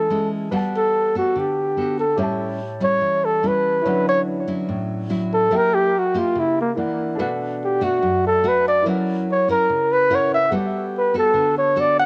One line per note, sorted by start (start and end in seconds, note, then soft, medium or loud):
0.00 0.50 E3 medium
0.00 0.30 A4 medium
0.10 0.49 G#3 medium
0.10 0.49 C#4 medium
0.10 0.49 E4 medium
0.51 1.33 G3 medium
0.51 1.11 B3 medium
0.51 1.11 F#4 medium
0.51 1.11 A4 medium
0.51 2.15 B4 soft
0.51 2.16 F#5 medium
0.51 2.17 A5 medium
0.76 1.13 A4 medium
1.15 1.74 B3 medium
1.15 1.40 F#4 medium
1.15 1.74 A4 medium
1.35 2.17 D3 medium
1.35 1.99 G4 medium
1.77 2.04 B3 medium
1.77 2.04 F#4 medium
1.77 2.04 A4 medium
2.00 2.18 A4 medium
2.16 2.99 A2 medium
2.16 2.59 G3 medium
2.16 2.60 C#4 medium
2.16 2.60 E4 medium
2.16 3.81 G4 soft
2.16 3.81 C#5 soft
2.16 3.83 E5 soft
2.22 3.84 A5 medium
2.80 3.40 G3 medium
2.80 3.40 C#4 medium
2.80 3.40 E4 medium
2.80 3.26 C#5 medium
3.01 3.83 E3 medium
3.25 3.49 A4 medium
3.43 3.82 G3 medium
3.43 3.82 C#4 medium
3.43 3.82 E4 medium
3.47 4.08 B4 medium
3.82 4.67 D3 medium
3.82 5.47 E4 soft
3.82 5.48 C#5 soft
3.86 4.45 F#3 medium
3.86 4.45 C#4 medium
3.86 5.49 D4 soft
3.86 4.45 E4 medium
3.86 5.50 F#5 soft
4.09 4.20 C#5 loud
4.48 5.07 F#3 medium
4.48 5.07 C#4 medium
4.48 5.07 E4 medium
4.69 5.50 A2 medium
5.10 5.48 F#3 medium
5.10 5.48 C#4 medium
5.10 5.48 E4 medium
5.34 5.58 A4 medium
5.51 6.33 F#3 medium
5.51 5.93 A#3 medium
5.51 5.93 E4 medium
5.51 5.93 G4 medium
5.51 6.74 A#4 soft
5.51 6.75 E5 soft
5.55 5.76 A#4 loud
5.55 6.76 G5 soft
5.74 6.00 G4 loud
5.99 6.19 F#4 medium
6.14 6.73 A#3 medium
6.14 6.74 E4 medium
6.14 6.41 F4 medium
6.14 6.74 G4 medium
6.35 6.75 C#3 medium
6.39 6.58 E4 medium
6.61 6.72 A#3 medium
6.75 7.15 E3 medium
6.75 7.15 A#3 medium
6.75 7.15 D4 medium
6.75 7.18 E4 medium
6.75 7.18 A#4 soft
6.75 7.19 D5 soft
6.75 7.19 F#5 medium
7.15 8.00 B2 medium
7.15 8.80 D4 medium
7.15 8.81 A4 soft
7.15 8.82 B4 soft
7.19 7.78 A3 medium
7.19 7.78 D4 medium
7.19 7.78 F#4 medium
7.19 8.83 F#5 medium
7.64 7.85 G4 medium
7.81 8.40 A3 medium
7.81 8.40 D4 medium
7.81 8.40 F#4 medium
7.81 8.24 F#4 medium
8.02 8.83 F#2 medium
8.27 8.50 A4 medium
8.44 8.82 A3 medium
8.44 8.82 D4 medium
8.44 8.82 F#4 medium
8.48 8.67 B4 medium
8.68 8.85 D5 medium
8.82 9.67 F#3 medium
8.82 9.27 C#4 medium
8.82 10.06 E4 soft
8.82 10.07 A#4 soft
8.86 9.27 E4 medium
8.86 9.27 A#4 medium
8.86 10.08 C#5 soft
8.86 10.09 F#5 medium
9.31 9.48 C#5 medium
9.48 10.07 C#4 medium
9.48 10.07 E4 medium
9.48 10.08 A#4 medium
9.48 9.94 A#4 medium
9.69 10.50 C#3 medium
9.92 10.16 B4 loud
10.09 10.37 C#4 medium
10.09 10.51 E4 soft
10.09 10.37 E4 medium
10.09 10.51 A#4 soft
10.09 10.37 A#4 medium
10.09 10.52 C#5 soft
10.09 10.47 F#5 soft
10.15 10.33 C#5 medium
10.34 10.52 E5 loud
10.49 11.33 G3 medium
10.49 11.11 B3 medium
10.49 11.11 F#4 medium
10.49 12.06 A4 soft
10.49 12.06 F#5 soft
10.53 12.06 G4 soft
10.53 11.11 A4 medium
10.53 12.06 B4 soft
10.98 11.15 B4 medium
11.14 11.73 B3 medium
11.14 11.73 F#4 medium
11.14 11.74 A4 medium
11.18 11.55 A4 medium
11.34 12.06 D3 medium
11.58 11.81 C#5 medium
11.76 12.03 B3 medium
11.76 12.03 F#4 medium
11.76 12.03 A4 medium
11.80 11.99 D5 medium
12.00 12.06 F#5 loud